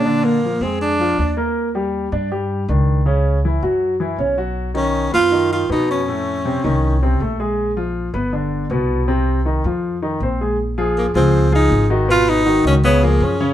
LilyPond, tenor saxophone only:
\new Staff \with { instrumentName = "Tenor saxophone" } { \time 4/4 \key bes \minor \tempo 4 = 160 d'8 bes4 c'8 d'4. r8 | r1 | r1 | r8 cis'4 f'4 f'8 dis'8 cis'8~ |
cis'2.~ cis'8 r8 | r1 | r1 | r4 bes8 c'4 ees'4 r8 |
f'8 ees'4 des'8 ces'8 bes8 des'8. r16 | }